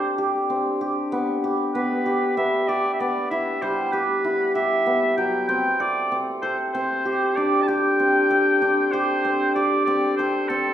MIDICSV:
0, 0, Header, 1, 3, 480
1, 0, Start_track
1, 0, Tempo, 625000
1, 857, Time_signature, 7, 3, 24, 8
1, 8246, End_track
2, 0, Start_track
2, 0, Title_t, "Oboe"
2, 0, Program_c, 0, 68
2, 0, Note_on_c, 0, 72, 86
2, 133, Note_off_c, 0, 72, 0
2, 1337, Note_on_c, 0, 71, 73
2, 1786, Note_off_c, 0, 71, 0
2, 1818, Note_on_c, 0, 76, 91
2, 2057, Note_on_c, 0, 74, 84
2, 2069, Note_off_c, 0, 76, 0
2, 2244, Note_off_c, 0, 74, 0
2, 2250, Note_on_c, 0, 76, 62
2, 2303, Note_on_c, 0, 74, 78
2, 2315, Note_off_c, 0, 76, 0
2, 2533, Note_off_c, 0, 74, 0
2, 2537, Note_on_c, 0, 76, 87
2, 2779, Note_on_c, 0, 72, 79
2, 2790, Note_off_c, 0, 76, 0
2, 3013, Note_on_c, 0, 71, 74
2, 3024, Note_off_c, 0, 72, 0
2, 3485, Note_off_c, 0, 71, 0
2, 3490, Note_on_c, 0, 76, 92
2, 3943, Note_off_c, 0, 76, 0
2, 3972, Note_on_c, 0, 79, 90
2, 4198, Note_off_c, 0, 79, 0
2, 4211, Note_on_c, 0, 79, 94
2, 4459, Note_on_c, 0, 74, 82
2, 4470, Note_off_c, 0, 79, 0
2, 4733, Note_off_c, 0, 74, 0
2, 4931, Note_on_c, 0, 72, 81
2, 5040, Note_off_c, 0, 72, 0
2, 5165, Note_on_c, 0, 72, 80
2, 5654, Note_on_c, 0, 74, 83
2, 5666, Note_off_c, 0, 72, 0
2, 5850, Note_on_c, 0, 81, 64
2, 5862, Note_off_c, 0, 74, 0
2, 5895, Note_on_c, 0, 79, 108
2, 5906, Note_off_c, 0, 81, 0
2, 6849, Note_on_c, 0, 72, 88
2, 6861, Note_off_c, 0, 79, 0
2, 7327, Note_off_c, 0, 72, 0
2, 7332, Note_on_c, 0, 74, 77
2, 7558, Note_off_c, 0, 74, 0
2, 7566, Note_on_c, 0, 74, 84
2, 7794, Note_off_c, 0, 74, 0
2, 7808, Note_on_c, 0, 72, 83
2, 8053, Note_on_c, 0, 69, 76
2, 8065, Note_off_c, 0, 72, 0
2, 8246, Note_off_c, 0, 69, 0
2, 8246, End_track
3, 0, Start_track
3, 0, Title_t, "Hammered dulcimer"
3, 0, Program_c, 1, 15
3, 0, Note_on_c, 1, 60, 60
3, 0, Note_on_c, 1, 62, 66
3, 0, Note_on_c, 1, 67, 79
3, 0, Note_on_c, 1, 69, 70
3, 136, Note_off_c, 1, 67, 0
3, 139, Note_on_c, 1, 67, 78
3, 378, Note_off_c, 1, 60, 0
3, 381, Note_on_c, 1, 60, 61
3, 619, Note_off_c, 1, 67, 0
3, 622, Note_on_c, 1, 67, 70
3, 861, Note_on_c, 1, 59, 76
3, 907, Note_off_c, 1, 60, 0
3, 1101, Note_off_c, 1, 67, 0
3, 1104, Note_on_c, 1, 67, 72
3, 1340, Note_off_c, 1, 59, 0
3, 1344, Note_on_c, 1, 59, 68
3, 1577, Note_off_c, 1, 67, 0
3, 1580, Note_on_c, 1, 67, 70
3, 1818, Note_off_c, 1, 59, 0
3, 1821, Note_on_c, 1, 59, 74
3, 1906, Note_off_c, 1, 69, 0
3, 2060, Note_off_c, 1, 67, 0
3, 2063, Note_on_c, 1, 67, 66
3, 2302, Note_off_c, 1, 59, 0
3, 2305, Note_on_c, 1, 59, 65
3, 2544, Note_on_c, 1, 64, 77
3, 2766, Note_off_c, 1, 62, 0
3, 2781, Note_on_c, 1, 55, 69
3, 3016, Note_off_c, 1, 67, 0
3, 3019, Note_on_c, 1, 67, 71
3, 3256, Note_off_c, 1, 64, 0
3, 3259, Note_on_c, 1, 64, 69
3, 3493, Note_off_c, 1, 67, 0
3, 3496, Note_on_c, 1, 67, 78
3, 3732, Note_off_c, 1, 59, 0
3, 3735, Note_on_c, 1, 59, 65
3, 3975, Note_on_c, 1, 54, 63
3, 4021, Note_off_c, 1, 67, 0
3, 4213, Note_on_c, 1, 60, 74
3, 4256, Note_off_c, 1, 54, 0
3, 4256, Note_off_c, 1, 55, 0
3, 4260, Note_off_c, 1, 59, 0
3, 4453, Note_on_c, 1, 69, 66
3, 4694, Note_off_c, 1, 60, 0
3, 4697, Note_on_c, 1, 60, 68
3, 4932, Note_off_c, 1, 69, 0
3, 4935, Note_on_c, 1, 69, 73
3, 5177, Note_off_c, 1, 60, 0
3, 5180, Note_on_c, 1, 60, 79
3, 5417, Note_on_c, 1, 67, 69
3, 5662, Note_on_c, 1, 62, 67
3, 5897, Note_off_c, 1, 67, 0
3, 5900, Note_on_c, 1, 67, 80
3, 5933, Note_off_c, 1, 64, 0
3, 6137, Note_off_c, 1, 60, 0
3, 6141, Note_on_c, 1, 60, 61
3, 6375, Note_off_c, 1, 69, 0
3, 6378, Note_on_c, 1, 69, 78
3, 6615, Note_off_c, 1, 62, 0
3, 6618, Note_on_c, 1, 62, 75
3, 6858, Note_off_c, 1, 67, 0
3, 6861, Note_on_c, 1, 67, 85
3, 7098, Note_off_c, 1, 60, 0
3, 7101, Note_on_c, 1, 60, 66
3, 7337, Note_off_c, 1, 67, 0
3, 7341, Note_on_c, 1, 67, 71
3, 7579, Note_off_c, 1, 60, 0
3, 7582, Note_on_c, 1, 60, 80
3, 7823, Note_off_c, 1, 69, 0
3, 7826, Note_on_c, 1, 69, 77
3, 8059, Note_off_c, 1, 60, 0
3, 8062, Note_on_c, 1, 60, 77
3, 8246, Note_off_c, 1, 60, 0
3, 8246, Note_off_c, 1, 62, 0
3, 8246, Note_off_c, 1, 67, 0
3, 8246, Note_off_c, 1, 69, 0
3, 8246, End_track
0, 0, End_of_file